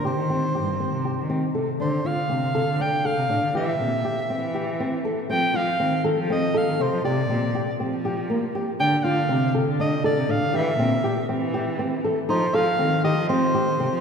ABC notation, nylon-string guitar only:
X:1
M:7/8
L:1/8
Q:1/4=120
K:Dphr
V:1 name="Nylon-string guitar"
G C G C G C A | D F C A D A D | G C G C G C A | C F C A C A C |
G C G C G B, G | D F C A D A D | G C G C G C A | E A C G C G C |]